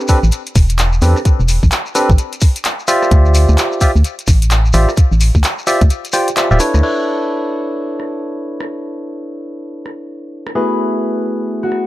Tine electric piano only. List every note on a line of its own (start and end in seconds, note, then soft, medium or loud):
0.09 0.18 C4 medium
0.09 0.18 D4 medium
0.09 0.18 G4 medium
0.09 0.18 A4 medium
0.09 0.18 B4 loud
1.02 1.17 C4 medium
1.02 1.17 D4 medium
1.02 1.17 G4 medium
1.02 1.17 A4 medium
1.02 1.17 B4 medium
1.95 2.10 C4 medium
1.95 2.10 D4 medium
1.95 2.10 G4 medium
1.95 2.10 A4 medium
1.95 2.10 B4 loud
2.88 3.79 F4 loud
2.88 3.79 G4 medium
2.88 3.79 C5 medium
2.88 3.79 D5 medium
2.88 3.79 E5 loud
3.81 3.90 F4 medium
3.81 3.90 G4 medium
3.81 3.90 C5 medium
3.81 3.90 D5 medium
3.81 3.90 E5 medium
4.74 4.89 F4 medium
4.74 4.89 G4 medium
4.74 4.89 C5 medium
4.74 4.89 D5 medium
4.74 4.89 E5 medium
5.67 5.82 F4 medium
5.67 5.82 G4 medium
5.67 5.82 C5 medium
5.67 5.82 D5 medium
5.67 5.82 E5 loud
6.13 6.28 F4 medium
6.13 6.28 G4 medium
6.13 6.28 C5 medium
6.13 6.28 D5 medium
6.13 6.28 G5 medium
6.37 6.48 F4 medium
6.37 6.48 G4 medium
6.37 6.48 C5 medium
6.37 6.48 D5 medium
6.37 6.48 E5 medium
6.51 6.58 F4 medium
6.51 6.58 G4 medium
6.51 6.58 C5 medium
6.51 6.58 D5 medium
6.51 6.58 E5 medium
6.60 6.82 D4 medium
6.60 6.82 E4 medium
6.60 6.82 A4 medium
6.60 6.82 B4 medium
6.60 6.82 C#5 medium
6.83 10.53 D4 medium
6.83 10.53 E4 medium
6.83 10.53 A4 medium
6.83 10.53 B4 medium
6.83 10.53 C#5 medium
10.55 11.87 A3 medium
10.55 11.87 B3 medium
10.55 11.87 E4 medium
10.55 11.87 F#4 medium
10.55 11.87 G#4 medium